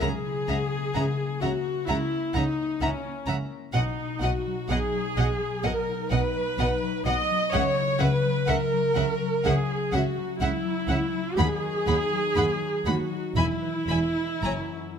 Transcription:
Already playing: F#3
0.00 C#2 C#3 G#4 E5 F#5 A#5
0.26 E4
0.48 C#2 C#3 C#4 E5 F#5 A#5
0.72 A#3
0.95 C#2 C#3 E4 E5 F#5 A#5
1.19 A#3
1.41 C#2 C#3 C#4 F#4 E5 F#5 A#5
1.66 A#3
1.88 C#2 C#3 C#4 E4 E5 F#5 A#5
2.12 E4
2.34 C#2 C#3 C#4 D#4 E5 F#5 A#5
2.57 A#3
2.80 C#2 C#3 C#4 E4 E5 F#5 A#5
3.04 A#3
3.27 C#2 C#3 C#4 E5 F#5 A#5
3.50 A#3
3.73 B1 B2 D#4 D#5 F#5
3.98 D#4
4.21 B1 B2 B3 F#4 D#5 F#5
4.46 F#3
4.69 B1 B2 D#4 G#4 D#5 F#5
4.94 F#3
5.16 B1 B2 B3 D#5 F#5
5.41 F#3
5.63 B1 B2 A#4 D#5 F#5
5.89 D#4
6.11 B1 B2 B3 B4 D#5 F#5
6.36 F#3
6.58 B1 B2 D#4 D#5 F#5
6.83 F#3
7.05 B1 B2 B3 D#5 F#5
7.31 F#3
7.52 C#2 C#3 C#5 E5 F#5
7.78 E4
7.99 C#2 C#3 C#4 B4 E5 F#5
8.25 F#3
8.47 C#2 C#3 E4 A#4 E5 F#5
8.73 F#3
8.95 C#2 C#3 C#4 E5 F#5
9.21 F#3
9.44 C#2 C#3 C#4 G#4 E5 F#5
9.69 E4
9.92 C#2 C#3 C#4 F#4 E5 F#5
10.17 F#3
10.40 C#2 C#3 E4 E5 F#5
10.64 F#3
10.88 C#2 C#3 C#4 E5 F#5
11.13 F#3
11.37 D#2 D#3 G#4 F#5 B5
11.63 F#4
11.87 D#2 D#4 F#5 B5
12.12 F#3
12.36 D#2 F#4 F#5 B5
12.61 F#3
12.86 D#2 D#4 F#4 F#5 B5
13.11 F#3
13.35 E1 E2 E3 E4 E5 G#5 B5
13.62 B4
13.88 E1 E2 G#3 E5 G#5 B5
14.14 E4
14.42 F#1 F#2 C#5 G#5 A#5
14.72 C#4

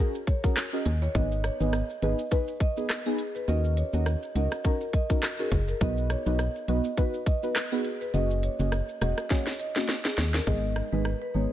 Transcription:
0.00 C#4 F#4 G#4 A#4
0.15 shaker, maracas
0.27 C#5, kick, closed hi-hat, shaker
0.44 C#4 F#4 G#4 A#4, kick, maracas, shaker
0.56 cross-stick, clap, shaker, maracas
0.73 C#4 F#4 G#4 A#4 D#5, maracas, shaker
0.85 D#2, closed hi-hat, high timbale, shaker, maracas
1.02 C#5, high timbale, shaker, maracas
1.15 G#1 B3 D#4 G#4 B4 D#5, kick, shaker, maracas
1.31 shaker, maracas
1.44 C#5, cross-stick, closed hi-hat, shaker, maracas
1.60 G#1 B3 D#4 G#4 B4 D#5, shaker, maracas
1.73 cross-stick, shaker, maracas
1.90 shaker, maracas
2.02 G#1 B3 D#4 G#4 B4 D#5, closed hi-hat, shaker
2.18 maracas, shaker
2.31 B3 D#4 G#4 B4, kick, maracas, shaker
2.48 shaker, maracas
2.60 D#5, kick, closed hi-hat, shaker
2.77 B3 D#4 G#4 B4, maracas, shaker
2.90 cross-stick, clap, shaker, maracas
3.06 B3 D#4 G#4 B4, shaker, maracas
3.19 closed hi-hat, shaker, maracas
3.35 B4, shaker, maracas
3.48 D#2 C#4 D#4 F#4 A#4 D#5, maracas, shaker
3.64 maracas, shaker
3.77 C#5, closed hi-hat, maracas, shaker
3.93 D#2 C#4 D#4 F#4 A#4 D#5, shaker, maracas
4.06 cross-stick, shaker, maracas
4.23 maracas, shaker
4.35 C#2 C#4 D#4 F#4 A#4 D#5, closed hi-hat, shaker
4.51 cross-stick, maracas, shaker
4.64 C#4 D#4 F#4 A#4, kick, maracas, shaker
4.81 maracas, shaker
4.93 D#5, kick, closed hi-hat, shaker
5.10 C#4 D#4 F#4 A#4, kick, maracas, shaker
5.23 cross-stick, clap, shaker, maracas
5.39 C#4 D#4 F#4 G#4 A#4, maracas, shaker
5.52 F#1, kick, closed hi-hat, high timbale, shaker, maracas
5.68 A#4, maracas, shaker
5.81 B1 B3 D#4 F#4 B4 D#5, kick, maracas, shaker
5.97 maracas, shaker
6.10 C#5, cross-stick, closed hi-hat, maracas, shaker
6.26 B1 B3 D#4 F#4 B4 D#5, maracas, shaker
6.39 cross-stick, maracas, shaker
6.55 maracas, shaker
6.68 B1 B3 D#4 F#4 B4 D#5, closed hi-hat, shaker
6.84 maracas, shaker
6.97 B3 D#4 F#4 B4, kick, maracas, shaker
7.14 shaker, maracas
7.26 D#5, kick, closed hi-hat, shaker
7.43 B3 D#4 F#4 B4, shaker, maracas
7.56 cross-stick, clap, shaker, maracas
7.72 B3 D#4 F#4 G#4 B4, maracas, shaker
7.85 closed hi-hat, shaker, maracas
8.01 B4, maracas, shaker
8.14 F#1 A#3 C#4 F#4 G#4 D#5, maracas, shaker
8.30 maracas, shaker
8.43 C#5, closed hi-hat, maracas, shaker
8.59 F#1 A#3 C#4 F#4 G#4 D#5, shaker, maracas
8.72 cross-stick, shaker, maracas
8.89 maracas, shaker
9.01 E1 A#3 C#4 F#4 G#4 D#5, cross-stick, closed hi-hat, shaker, maracas
9.18 cross-stick, maracas, shaker
9.30 A#3 C#4 F#4 G#4 C#5, kick, snare, maracas, shaker
9.47 snare, shaker, maracas
9.59 D#5, closed hi-hat, shaker, maracas
9.76 A#3 C#4 F#4 G#4, snare, shaker, maracas
9.88 snare, shaker, maracas
10.05 G#4, snare, maracas, shaker
10.18 D#2, snare, closed hi-hat, high timbale, shaker, maracas
10.34 A#4, snare, maracas, shaker
10.47 G#1 G#3 B3 D#4 G#4 D#5, kick
10.76 cross-stick
10.92 G#1 G#3 B3 D#4 G#4 B4
11.05 cross-stick
11.22 B4
11.34 G#1 G#3 B3 D#4 G#4 C#5

